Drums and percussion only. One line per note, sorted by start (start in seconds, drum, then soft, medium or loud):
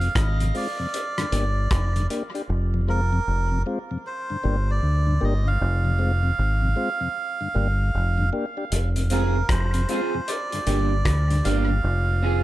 0.01 closed hi-hat soft
0.15 kick loud
0.15 cross-stick loud
0.15 closed hi-hat loud
0.40 closed hi-hat medium
0.55 open hi-hat soft
0.94 closed hi-hat medium
1.18 cross-stick medium
1.18 closed hi-hat medium
1.32 closed hi-hat medium
1.71 kick loud
1.71 cross-stick loud
1.71 closed hi-hat medium
1.96 closed hi-hat medium
2.10 closed hi-hat medium
2.35 closed hi-hat soft
8.72 closed hi-hat loud
8.96 closed hi-hat medium
9.10 closed hi-hat medium
9.49 kick loud
9.49 cross-stick loud
9.49 closed hi-hat medium
9.74 closed hi-hat medium
9.89 closed hi-hat medium
10.28 closed hi-hat loud
10.52 closed hi-hat medium
10.67 closed hi-hat medium
11.05 kick loud
11.05 cross-stick loud
11.05 closed hi-hat medium
11.30 closed hi-hat medium
11.45 closed hi-hat medium